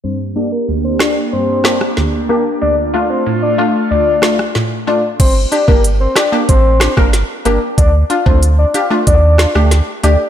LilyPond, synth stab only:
\new Staff \with { instrumentName = "Synth stab" } { \time 4/4 \key g \minor \tempo 4 = 93 << { r8 <bes d' g'>16 r8. <bes d' g'>16 r8. <bes d' g'>16 r8. <bes d' g'>16 r16 | r8 <a d' f'>16 r8. <a d' f'>16 r8. <a d' f'>16 r8. <a d' f'>16 r16 | r8 <d' g'>16 <bes d' g'>16 r8 <d' g'>16 <bes d' g'>16 r8 <d' g'>16 <bes d' bes'>16 r8 <bes d' g'>16 r16 | r8 <d' f'>16 <a d' f'>16 r8 <d' g'>16 <a d' f'>16 r8 <d' f'>16 <a d' g'>16 r8 <a d' g'>16 r16 | } \\ { g,4 d,4 g,4 d,4 | d,4 a,4 d,4 a,4 | r1 | r1 | } >> }